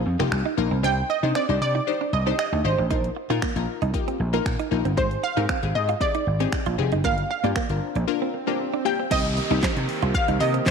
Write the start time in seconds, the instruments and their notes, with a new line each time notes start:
0.06 slap bass F2, muted clean electric guitar stroke
0.19 slap bass F1, synth stab A#3 D#4 F4 G4, clean electric guitar A#3, finger snap
0.32 slap bass C2, finger snap
0.46 clean electric guitar D#4
0.57 slap bass A#1, synth stab A#3 D#4 F4 A#4, muted clean electric guitar stroke
0.71 slap bass C2, clean electric guitar C4
0.83 slap bass C2, clean electric guitar C4, synth stab D4 D#4 G4 C5, synth pluck G5
1.10 synth pluck D#5, muted clean electric guitar stroke
1.23 slap bass C3, synth stab D4 D#4 G4 C5, clean electric guitar D#4
1.35 clean electric guitar C4, synth pluck D5, finger snap
1.49 slap bass C2, synth stab D4 D#4 G4 C5, muted clean electric guitar stroke
1.61 slap bass C3, synth pluck D5
1.75 clean electric guitar D#4
1.87 synth stab D4 D#4 G4 C5
2.01 clean electric guitar D4
2.13 slap bass C2, synth pluck D#5, muted clean electric guitar stroke
2.26 clean electric guitar C4, synth stab D4 D#4 G4 C5
2.39 synth pluck D#5, finger snap
2.52 slap bass D2, clean electric guitar D#4
2.64 slap bass G#1, synth stab D4 D#4 G4 D#5, synth pluck C5, muted clean electric guitar stroke
2.78 slap bass A1, clean electric guitar D4
2.90 slap bass A#1, synth stab A#3 D#4 F4 A#4, clean electric guitar D#4, kick, closed hi-hat
3.04 closed hi-hat
3.16 muted clean electric guitar stroke
3.30 slap bass A#2, synth stab A#3 D#4 F4 A#4, clean electric guitar F4, closed hi-hat
3.42 clean electric guitar A#3, finger snap, kick, closed hi-hat
3.56 slap bass A#1, synth stab A#3 D#4 F4 A#4, muted clean electric guitar stroke, closed hi-hat
3.82 slap bass C2, clean electric guitar D#4, closed hi-hat
3.94 synth stab A#3 D#4 F4 G4, kick, closed hi-hat
4.08 clean electric guitar C4, closed hi-hat
4.20 slap bass A#1, muted clean electric guitar stroke
4.33 synth stab A#3 D#4 F4 A#4, clean electric guitar A#3, closed hi-hat
4.46 slap bass A#2, finger snap, kick, closed hi-hat
4.59 clean electric guitar D#4, closed hi-hat
4.71 slap bass A#1, synth stab A#3 D#4 F4 A#4, muted clean electric guitar stroke
4.85 slap bass G1, clean electric guitar C4, closed hi-hat
4.97 slap bass G#1, clean electric guitar G#3, synth stab C4 D#4 G4 G#4, synth pluck C5, kick, closed hi-hat
5.11 closed hi-hat
5.23 synth pluck F5, muted clean electric guitar stroke
5.36 slap bass G#2, synth stab C4 D#4 G4 A#4, clean electric guitar D#4, closed hi-hat
5.49 clean electric guitar C4, finger snap, kick, closed hi-hat
5.63 slap bass G#1, synth stab C4 D#4 G4 G#4, muted clean electric guitar stroke, closed hi-hat
5.75 slap bass G#2, synth pluck D#5
5.89 clean electric guitar F4, closed hi-hat
6.00 synth stab C4 D#4 G4 G#4, synth pluck D5, kick, closed hi-hat
6.15 clean electric guitar D#4, closed hi-hat
6.27 slap bass G#1, muted clean electric guitar stroke
6.40 synth stab C4 D#4 G4 G#4, clean electric guitar C4, closed hi-hat
6.52 finger snap, kick, closed hi-hat
6.66 slap bass A#1, clean electric guitar F4, closed hi-hat
6.78 slap bass F1, synth stab C4 D#4 G4 G#4, muted clean electric guitar stroke
6.92 slap bass F#1, clean electric guitar D#4, closed hi-hat
7.04 slap bass G1, synth stab A#3 D4 F4 G4, clean electric guitar A#3, synth pluck F5, kick, closed hi-hat, swell
7.18 closed hi-hat
7.31 synth pluck F5, muted clean electric guitar stroke
7.43 slap bass G2, synth stab A#3 D4 F4 G4, clean electric guitar D4, closed hi-hat
7.56 clean electric guitar A#3, finger snap, kick, closed hi-hat
7.70 slap bass G1, synth stab A#3 D4 F4 A#4, muted clean electric guitar stroke, closed hi-hat
7.95 slap bass A#1, clean electric guitar D4, closed hi-hat
8.08 synth stab A#3 D4 F4 A#4
8.22 clean electric guitar C4
8.34 muted clean electric guitar stroke
8.47 synth stab A#3 D4 F4 G4, clean electric guitar A#3
8.74 clean electric guitar D4
8.85 synth stab A#3 D4 F4 G4, synth pluck G5, muted clean electric guitar stroke
9.00 clean electric guitar C4
9.11 slap bass C2, pipe organ D#3 A#3 C4 G4, synth stab A#3 C4 D#4 G4, clean electric guitar C4, synth pluck D#5, kick, closed hi-hat, crash, downlifter
9.25 closed hi-hat
9.37 muted clean electric guitar stroke, open hi-hat
9.50 slap bass C2, synth stab A#3 C4 D#4 G4, clean electric guitar D#4, closed hi-hat
9.63 clean electric guitar C4, muted slap bass stroke, kick, snare, clap, closed hi-hat
9.77 slap bass C3, muted clean electric guitar stroke, closed hi-hat
9.89 open hi-hat
10.02 slap bass C2, clean electric guitar F4, closed hi-hat
10.14 synth pluck F5, kick, closed hi-hat
10.28 slap bass C2, clean electric guitar D#4, closed hi-hat
10.40 slap bass C3, synth stab A#3 C4 D#4 G4, synth pluck D#5, muted clean electric guitar stroke, open hi-hat
10.54 clean electric guitar C4, closed hi-hat
10.66 slap bass C3, synth pluck C5, kick, snare, clap, closed hi-hat